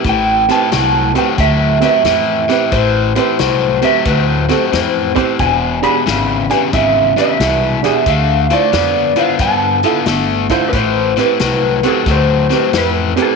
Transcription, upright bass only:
X:1
M:4/4
L:1/8
Q:"Swing" 1/4=90
K:Am
V:1 name="Upright bass" clef=bass
A,,,2 C,,2 D,,2 F,,2 | A,,,2 C,,2 D,,2 F,,2 | E,,,2 ^G,,,2 G,,,2 C,,2 | D,,2 F,,2 G,,2 G,,,2 |
A,,,2 C,,2 D,,2 F,,2 |]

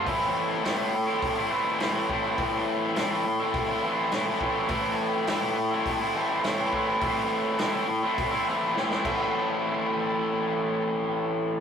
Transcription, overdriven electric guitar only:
X:1
M:4/4
L:1/16
Q:1/4=103
K:Am
V:1 name="Overdriven electric guitar"
[A,,E,A,CE]4 [A,,E,A,CE] [A,CE]2 [A,CE]2 [A,CE] [E,A,CE]2 [A,,E,A,CE] [A,CE] [E,A,CE] [A,CE] | [A,,E,A,CE]4 [A,,E,A,CE] [A,CE]2 [A,CE]2 [A,CE] [E,A,CE]2 [A,,E,A,CE] [A,CE] [E,A,CE] [A,CE] | [A,,E,A,CE]4 [A,,E,A,CE] [A,CE]2 [A,CE]2 [A,CE] [E,A,CE]2 [A,,E,A,CE] [A,CE] [E,A,CE] [A,CE] | [A,,E,A,CE]4 [A,,E,A,CE] [A,CE]2 [A,CE]2 [A,CE] [E,A,CE]2 [A,,E,A,CE] [A,CE] [A,,E,A,CE]2- |
[A,,E,A,CE]16 |]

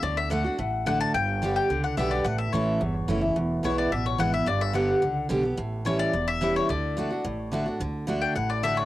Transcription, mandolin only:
X:1
M:4/4
L:1/8
Q:1/4=216
K:D
V:1 name="Mandolin"
d e f4 f a | g3 g2 f e d | f e c4- c z | z2 c d e c f e |
d e f4 z2 | z2 c d2 e2 c | d6 z2 | z3 g f d e c |]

